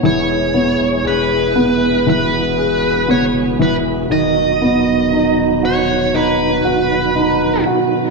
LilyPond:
<<
  \new Staff \with { instrumentName = "Lead electric guitar" } { \time 4/4 \key b \major \tempo 4 = 59 cis''4 b'4 b'4 cis''8 b'8 | dis''4. cis''8 b'4. r8 | }
  \new Staff \with { instrumentName = "Grand piano" } { \time 4/4 \key b \major e8 b8 gis'8 b8 e8 gis'8 b8 e8 | dis8 b8 dis'8 fis'8 dis'8 fis'8 dis'8 fis'8 | }
  \new Staff \with { instrumentName = "Tonewheel organ" } { \time 4/4 \key b \major e'2 fis'2 | dis'1 | }
  \new Staff \with { instrumentName = "Tonewheel organ" } { \clef bass \time 4/4 \key b \major << { <e gis gis'>1 | <dis fis fis'>1 | } \\ { b,1~ | b,1 | } >> }
  \new Staff \with { instrumentName = "Sub bass" } { \clef bass \time 4/4 \key b \major e,,8. e,,16 e,,2 fis,,8 e,,8 | dis,,2~ dis,,8 dis,,4 r8 | }
>>